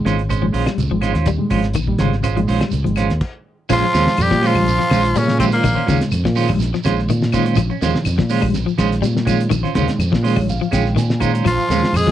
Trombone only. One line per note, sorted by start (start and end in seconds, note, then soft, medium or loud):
3.72 4.22 F3 medium
4.20 4.46 G3 medium
4.45 5.21 F3 medium
5.19 5.41 C#3 medium
5.43 5.48 C3 medium
5.55 5.99 A#2 medium
11.49 11.99 F3 medium
11.97 12.11 G#3 medium